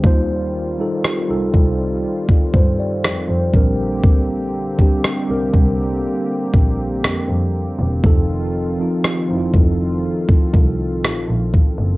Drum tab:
SD |----r-------r---|----r-------r---|----r-------r---|
BD |o-----o--oo---o-|o--o--o---o-----|o-----o--oo---o-|